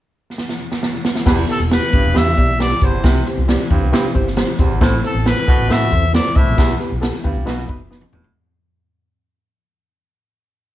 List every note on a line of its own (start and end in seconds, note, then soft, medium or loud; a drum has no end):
0.38 snare soft
0.49 snare medium
0.72 snare medium
0.83 snare medium
1.05 snare loud
1.16 snare medium
1.26 1.43 E1 medium
1.26 1.44 E2 medium
1.26 1.38 B3 loud
1.26 1.39 E4 loud
1.26 1.39 G4 medium
1.26 1.39 B4 loud
1.26 kick loud
1.26 snare loud
1.26 crash medium
1.48 1.61 B3 medium
1.48 1.61 E4 medium
1.48 1.61 G4 medium
1.48 1.61 A4 medium
1.48 closed hi-hat medium
1.60 1.77 E1 medium
1.70 1.83 B3 medium
1.70 1.83 E4 medium
1.70 1.83 G4 medium
1.70 1.83 B4 medium
1.70 2.19 B4 medium
1.70 snare loud
1.70 closed hi-hat medium
1.93 2.02 G1 medium
1.93 2.11 G2 medium
1.93 2.05 B3 medium
1.93 2.05 E4 medium
1.93 2.06 G4 medium
1.93 2.06 B4 medium
1.93 kick medium
1.93 closed hi-hat medium
2.05 2.13 E1 medium
2.14 2.33 E2 loud
2.14 2.33 G2 medium
2.14 2.27 B3 medium
2.14 2.27 E4 medium
2.14 2.27 G4 medium
2.14 2.27 B4 medium
2.14 2.61 E5 medium
2.14 snare loud
2.14 closed hi-hat medium
2.37 2.72 B1 medium
2.37 2.49 B3 medium
2.37 2.50 E4 medium
2.37 2.50 G4 medium
2.37 2.50 D5 medium
2.37 kick medium
2.37 closed hi-hat medium
2.58 2.71 B3 medium
2.58 2.72 E4 medium
2.58 2.72 G4 medium
2.58 2.72 B4 medium
2.58 2.86 D5 medium
2.58 snare loud
2.58 closed hi-hat medium
2.81 2.99 G1 medium
2.81 2.99 E2 medium
2.81 2.94 B3 medium
2.81 2.94 E4 medium
2.81 2.94 G4 medium
2.81 2.95 B4 medium
2.81 3.27 C5 medium
2.81 kick medium
2.81 closed hi-hat medium
3.03 3.21 C2 medium
3.03 3.21 C3 medium
3.03 3.16 C4 medium
3.03 3.16 E4 medium
3.03 3.17 G4 medium
3.03 3.17 C5 loud
3.03 kick medium
3.03 snare loud
3.03 closed hi-hat medium
3.26 3.38 C4 medium
3.26 3.39 E4 medium
3.26 3.39 G4 medium
3.26 3.39 C5 medium
3.26 closed hi-hat medium
3.37 3.54 C2 medium
3.48 3.61 C4 medium
3.48 3.61 E4 medium
3.48 3.61 G4 medium
3.48 3.61 D5 medium
3.48 snare loud
3.48 closed hi-hat medium
3.70 3.79 E2 medium
3.70 3.88 G2 medium
3.70 3.83 C4 medium
3.70 3.83 E4 medium
3.70 3.83 G4 medium
3.70 3.84 C5 medium
3.70 kick medium
3.70 closed hi-hat medium
3.82 3.91 C2 medium
3.92 4.10 G2 medium
3.92 4.10 C3 loud
3.92 4.05 C4 loud
3.92 4.05 E4 medium
3.92 4.05 G4 loud
3.92 4.06 C5 loud
3.92 snare loud
3.92 closed hi-hat medium
4.14 4.41 G1 medium
4.14 4.27 C4 medium
4.14 4.27 E4 medium
4.14 4.27 G4 medium
4.14 4.28 C5 medium
4.14 kick medium
4.14 closed hi-hat medium
4.27 snare soft
4.37 4.49 C4 medium
4.37 4.49 E4 medium
4.37 4.50 G4 medium
4.37 4.50 C5 medium
4.37 snare loud
4.37 closed hi-hat medium
4.58 4.68 E1 medium
4.58 4.77 E2 medium
4.58 4.71 C4 medium
4.58 4.72 E4 medium
4.58 4.72 G4 medium
4.58 4.72 C5 medium
4.58 kick medium
4.58 closed hi-hat medium
4.70 4.79 G#1 medium
4.81 4.98 A1 medium
4.81 4.99 A2 medium
4.81 4.93 C4 medium
4.81 4.94 E4 loud
4.81 4.94 A4 medium
4.81 4.94 C5 loud
4.81 kick loud
4.81 snare loud
4.81 closed hi-hat medium
5.03 5.16 C4 medium
5.03 5.16 E4 medium
5.03 5.16 A4 medium
5.03 5.25 A4 medium
5.03 5.16 C5 medium
5.03 closed hi-hat medium
5.15 5.31 A1 medium
5.25 5.38 C4 medium
5.25 5.38 E4 medium
5.25 5.38 A4 medium
5.25 5.73 B4 medium
5.25 5.38 C5 medium
5.25 snare loud
5.25 closed hi-hat medium
5.47 5.56 C2 medium
5.47 5.65 B2 medium
5.47 5.59 C4 medium
5.47 5.60 E4 medium
5.47 5.60 A4 medium
5.47 5.60 B4 medium
5.47 kick medium
5.47 closed hi-hat medium
5.59 5.67 A1 medium
5.68 5.87 A2 medium
5.68 5.88 B2 medium
5.68 5.82 C4 medium
5.68 5.82 E4 medium
5.68 5.82 A4 medium
5.68 5.82 B4 loud
5.68 6.14 E5 loud
5.68 snare medium
5.68 closed hi-hat medium
5.91 6.18 E2 medium
5.91 6.04 C4 medium
5.91 6.04 E4 medium
5.91 6.04 A4 medium
5.91 6.04 C5 medium
5.91 kick medium
5.91 closed hi-hat medium
6.13 6.26 C4 medium
6.13 6.26 E4 medium
6.13 6.26 A4 medium
6.13 6.26 C5 medium
6.13 6.38 D5 medium
6.13 snare loud
6.13 closed hi-hat medium
6.35 6.45 C2 medium
6.35 6.54 A2 medium
6.35 6.48 C4 medium
6.35 6.48 E4 medium
6.35 6.48 A4 medium
6.35 6.49 C5 medium
6.35 6.81 E5 medium
6.35 kick medium
6.35 closed hi-hat medium
6.47 6.56 A#1 medium
6.57 6.75 B1 medium
6.57 6.76 E2 medium
6.57 6.70 B3 medium
6.57 6.70 E4 medium
6.57 6.71 G4 medium
6.57 6.71 B4 loud
6.57 kick loud
6.57 snare loud
6.57 closed hi-hat medium
6.79 6.92 B3 medium
6.79 6.92 E4 medium
6.79 6.93 G4 medium
6.79 6.93 B4 medium
6.79 closed hi-hat medium
6.92 7.09 B1 medium
7.01 7.14 B3 medium
7.01 7.14 E4 medium
7.01 7.15 G4 medium
7.01 7.15 A4 medium
7.01 snare loud
7.01 closed hi-hat medium
7.23 7.33 D2 medium
7.23 7.42 G2 medium
7.23 7.37 B3 medium
7.23 7.37 E4 medium
7.23 7.37 G4 medium
7.23 7.37 B4 medium
7.23 7.45 G5 medium
7.23 kick medium
7.23 closed hi-hat medium
7.36 7.45 C2 medium
7.46 7.64 B1 loud
7.46 7.65 B2 medium
7.46 7.59 B3 loud
7.46 7.59 D#4 loud
7.46 7.59 F#4 medium
7.46 7.59 B4 loud
7.46 7.67 F#5 medium
7.46 snare loud
7.46 closed hi-hat medium
7.68 7.81 B3 medium
7.68 7.81 D#4 medium
7.68 7.81 F#4 medium
7.68 7.82 B4 medium
7.68 7.89 E5 medium
7.68 kick medium
7.68 closed hi-hat medium
7.91 8.03 B3 medium
7.91 8.03 D#4 medium
7.91 8.04 F#4 medium
7.91 8.04 B4 medium
7.91 8.33 D#5 medium
7.91 snare medium
8.01 high tom medium
8.12 8.31 E1 medium
8.12 8.31 A2 medium
8.12 8.25 B3 medium
8.12 8.26 D#4 medium
8.12 8.26 F#4 medium
8.12 8.26 B4 medium
8.12 mid tom medium
8.24 floor tom medium